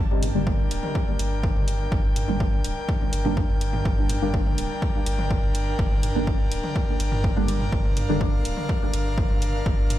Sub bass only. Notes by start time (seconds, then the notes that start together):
0.00 G1
0.35 G1
0.71 D1
1.19 G1
1.56 G1
1.92 G1
2.28 G1
2.64 D1
3.13 G1
3.49 G1
3.85 G1
4.22 G1
4.58 D1
5.06 G1
5.43 G1
5.79 G1
6.15 G1
6.51 D1
7.00 G1
7.36 G1
7.72 G1
8.09 G1
8.45 D1
8.93 G1
9.30 G1
9.66 G1